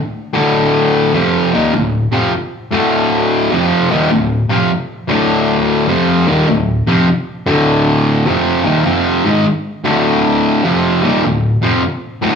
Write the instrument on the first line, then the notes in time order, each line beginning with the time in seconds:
distorted electric guitar
0.33 D2 A2 D3
1.14 F2 C3 F3
1.53 D#2 A#2 D#3
1.74 D2 A2
2.12 F2 C3 F3
2.71 D2 A2 D3
3.51 F2 C3 F3
3.90 D#2 A#2 D#3
4.11 D2 A2
4.49 F2 C3 F3
5.08 D2 A2 D3
5.88 F2 C3 F3
6.27 D#2 A#2 D#3
6.48 D2 A2
6.87 F2 C3 F3
7.46 D2 A2 D3
8.26 F2 C3 F3
8.64 D#2 A#2 D#3
8.85 F2 C3 F3
9.25 G#2 D#3 G#3
9.84 D2 A2 D3
10.64 F2 C3 F3
11.02 D#2 A#2 D#3
11.24 D2 A2
11.62 F2 C3 F3
12.22 D2 A2 D3